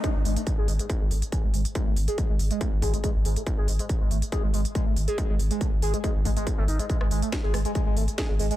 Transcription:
0.04 analog synth lead G#3, kick, closed hi-hat
0.15 sub bass G#1
0.25 sub bass G#1, analog synth lead G#3, open hi-hat
0.36 analog synth lead A3, closed hi-hat
0.47 kick, closed hi-hat
0.58 sub bass G#1, analog synth lead G#4
0.68 sub bass G#1, analog synth lead G#3, open hi-hat
0.79 analog synth lead G#3, closed hi-hat
0.90 kick, closed hi-hat
1.01 sub bass G#1, analog synth lead G#3
1.11 sub bass G#1, analog synth lead A3, open hi-hat
1.22 closed hi-hat
1.32 analog synth lead G#4, kick, closed hi-hat
1.44 sub bass G#1, analog synth lead G#3
1.54 sub bass G#1, analog synth lead G#3, open hi-hat
1.65 closed hi-hat
1.75 analog synth lead G#3, kick, closed hi-hat
1.86 sub bass G#1, analog synth lead A3
1.97 sub bass G#1, open hi-hat
2.08 analog synth lead G#4, closed hi-hat
2.18 analog synth lead G#3, kick, closed hi-hat
2.29 sub bass G#1, analog synth lead G#3
2.39 sub bass G#1, open hi-hat
2.51 analog synth lead G#3, closed hi-hat
2.61 analog synth lead A3, kick, closed hi-hat
2.72 sub bass G#1
2.82 sub bass G#1, analog synth lead G#4, kick, open hi-hat
2.94 analog synth lead G#3, closed hi-hat
3.04 analog synth lead G#3, kick, closed hi-hat
3.15 sub bass G#1
3.25 sub bass G#1, analog synth lead G#3, open hi-hat
3.36 analog synth lead A3, closed hi-hat
3.47 kick, closed hi-hat
3.58 sub bass G#1, analog synth lead G#4
3.68 sub bass G#1, analog synth lead G#3, open hi-hat
3.79 analog synth lead G#3, closed hi-hat
3.89 kick, closed hi-hat
4.01 sub bass G#1, analog synth lead G#3
4.11 sub bass G#1, analog synth lead A3, open hi-hat
4.22 closed hi-hat
4.32 analog synth lead G#4, kick, closed hi-hat
4.43 sub bass G#1, analog synth lead G#3
4.54 sub bass G#1, analog synth lead G#3, open hi-hat
4.65 closed hi-hat
4.75 analog synth lead G#3, kick, closed hi-hat
4.86 sub bass G#1, analog synth lead A3
4.97 sub bass G#1, open hi-hat
5.08 analog synth lead G#4, closed hi-hat
5.18 analog synth lead G#3, kick, closed hi-hat
5.29 sub bass G#1, analog synth lead G#3
5.39 sub bass G#1, open hi-hat
5.51 analog synth lead G#3, closed hi-hat
5.61 analog synth lead A3, kick, closed hi-hat
5.72 sub bass G#1
5.82 sub bass G#1, analog synth lead G#4, open hi-hat
5.94 analog synth lead G#3, closed hi-hat
6.04 analog synth lead G#3, kick, closed hi-hat
6.15 sub bass G#1
6.25 sub bass G#1, analog synth lead G#3, kick, open hi-hat
6.37 analog synth lead G#3, closed hi-hat
6.47 kick, closed hi-hat
6.58 sub bass G#1, analog synth lead A3
6.68 sub bass G#1, analog synth lead D#4, open hi-hat
6.79 analog synth lead G#3, closed hi-hat
6.90 analog synth lead G#3, kick, closed hi-hat
7.01 sub bass G#1, analog synth lead G#3, cross-stick
7.11 sub bass G#1, analog synth lead G#3, open hi-hat
7.22 analog synth lead A3, closed hi-hat
7.32 kick, snare, closed hi-hat
7.44 sub bass G#1, analog synth lead G#4
7.54 sub bass G#1, analog synth lead G#3, cross-stick, open hi-hat
7.65 analog synth lead G#3, closed hi-hat
7.75 analog synth lead G#3, kick, closed hi-hat
7.86 sub bass G#1, analog synth lead G#3
7.97 sub bass G#1, analog synth lead A3, open hi-hat
8.08 closed hi-hat
8.18 analog synth lead G#4, kick, snare, closed hi-hat
8.29 sub bass G#1, analog synth lead G#3
8.39 sub bass G#1, analog synth lead G#3, open hi-hat
8.51 analog synth lead G#3, closed hi-hat

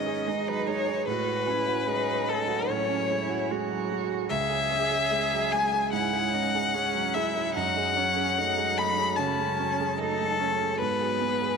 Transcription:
Already playing: grand piano D#3 F#3 G#3 D#4 G#4, ambient pad G#3 G#4 B4, cello C#4, violin D#5
0.06 grand piano G#4
0.27 grand piano G#3, cello D#4
0.47 grand piano F#3, violin B4
0.67 grand piano G#3, violin C#5
0.88 grand piano G#4
1.07 grand piano A2, ambient pad F#3 C#5 G#5, cello F#4, violin B4
1.29 grand piano F#4
1.47 grand piano C#4, cello E4
1.67 grand piano F#4
1.86 grand piano G#3, cello D#4
2.08 grand piano F#3
2.28 grand piano A3, violin A4
2.48 grand piano F#4
2.69 grand piano A2, cello C#4, violin C#5
2.89 grand piano C#4
3.10 grand piano G#3, cello E4
3.29 grand piano F#4
3.51 grand piano G#3, cello F#4
3.71 grand piano F#3
3.90 grand piano G#3
4.10 grand piano F#4
4.29 grand piano C#2, ambient pad G#3 G#4 C#5, cello G#4, violin E5
4.50 grand piano G#4
4.70 grand piano C#4
4.91 grand piano G#4
5.11 grand piano G#3
5.32 grand piano F#3
5.52 grand piano G#3, violin G#5
5.73 grand piano G#4
5.93 grand piano G#2, cello E4, violin F#5
6.13 grand piano G#4
6.34 grand piano C#4, cello D#4
6.55 grand piano G#4
6.74 grand piano G#3, cello C#4
6.94 grand piano F#3
7.14 grand piano G#3, cello E4, violin E5
7.35 grand piano G#4
7.55 grand piano F#2, ambient pad F#3 F#4 C#5, cello D#4, violin F#5
7.77 grand piano G#4
7.96 grand piano C#4, cello C#4
8.16 grand piano G#4
8.38 grand piano A3, cello D#4
8.57 grand piano G#3
8.78 grand piano A3, violin B5
8.98 grand piano G#4
9.16 grand piano C#3, cello C#4, violin A5
9.39 grand piano G#3
9.60 grand piano C#4
9.80 grand piano G#4
9.98 grand piano A3, cello D#4, violin A4
10.21 grand piano G#3
10.40 grand piano A3, cello C#4
10.61 grand piano G#4
10.79 grand piano G#2, cello B3, ambient pad B3 B4 G#5, violin B4
11.01 grand piano G#4
11.21 grand piano B3
11.42 grand piano G#4

